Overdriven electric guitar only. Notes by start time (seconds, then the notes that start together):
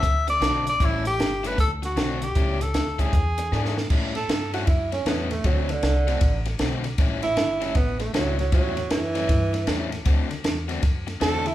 0.03 muted overdriven electric guitar stroke
0.27 muted overdriven electric guitar stroke
0.41 D3 C4 F#4 A4
0.66 muted overdriven electric guitar stroke
0.80 A2 G3 C#4 E4
1.05 muted overdriven electric guitar stroke
1.19 muted overdriven electric guitar stroke
1.44 A2 G3 C#4 E4
1.58 muted overdriven electric guitar stroke
1.82 muted overdriven electric guitar stroke
1.97 D3 A3 C4 F#4
2.22 muted overdriven electric guitar stroke
2.36 A2 G3 C#4 E4
2.60 muted overdriven electric guitar stroke
2.75 muted overdriven electric guitar stroke
2.99 A2 G3 C#4 E4
3.13 muted overdriven electric guitar stroke
3.38 muted overdriven electric guitar stroke
3.52 E3 B3 D4 G#4
3.77 muted overdriven electric guitar stroke
3.91 A2 G3 C#4 E4
4.16 muted overdriven electric guitar stroke
4.29 muted overdriven electric guitar stroke
4.54 A2 G3 C#4 E4
4.68 muted overdriven electric guitar stroke
4.92 muted overdriven electric guitar stroke
5.06 A2 G3 C#4 E4
5.31 muted overdriven electric guitar stroke
5.45 D3 A3 C4 F#4
5.70 muted overdriven electric guitar stroke
5.83 muted overdriven electric guitar stroke
6.07 D3 A3 C4 F#4
6.22 muted overdriven electric guitar stroke
6.46 muted overdriven electric guitar stroke
6.60 D3 A3 C4 F#4
6.85 muted overdriven electric guitar stroke
6.99 A2 G3 C#4 E4
7.23 muted overdriven electric guitar stroke
7.36 muted overdriven electric guitar stroke
7.61 A2 G3 C#4 E4
7.75 muted overdriven electric guitar stroke
8.00 muted overdriven electric guitar stroke
8.14 A2 G3 C#4 E4
8.39 muted overdriven electric guitar stroke
8.52 A2 G3 C#4 E4
8.77 muted overdriven electric guitar stroke
8.91 muted overdriven electric guitar stroke
9.15 A2 G3 C#4 E4
9.29 muted overdriven electric guitar stroke
9.53 muted overdriven electric guitar stroke
9.67 A2 G3 C#4 E4
9.92 muted overdriven electric guitar stroke
10.05 D3 A3 C4 F#4
10.30 muted overdriven electric guitar stroke
10.44 muted overdriven electric guitar stroke
10.68 D3 A3 C4 F#4
10.83 muted overdriven electric guitar stroke
11.07 muted overdriven electric guitar stroke
11.20 D3 A3 C4 F#4
11.45 muted overdriven electric guitar stroke